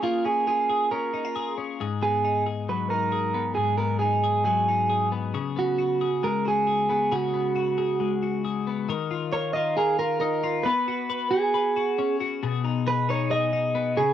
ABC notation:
X:1
M:4/4
L:1/16
Q:1/4=136
K:Abdor
V:1 name="Clean electric guitar"
F2 A2 A4 B6 z2 | z2 A4 z2 c2 B6 | A2 B2 A4 A6 z2 | z2 G6 B2 A4 A2 |
G12 z4 | z4 d2 e2 A2 B2 B4 | =B6 A8 z2 | z4 c2 d2 e6 A2 |]
V:2 name="Clean electric guitar"
[B,DFA]2 D2 F2 A2 D2 E F A2 D2 | [A,,A]2 C2 E2 A2 G,2 E2 A2 C2 | [A,,A]2 C2 E2 A2 G,2 E2 A2 C2 | [D,A]2 C2 G2 A2 A,2 G2 A2 C2 |
[D,A]2 C2 G2 A2 A,2 G2 A2 C2 | [E,B]2 F2 B2 F2 B2 F2 E2 F2 | [=B,=B]2 ^F2 B2 F2 B2 F2 ^C2 F2 | [C,A]2 E2 A2 E2 A2 E2 C2 D,2 |]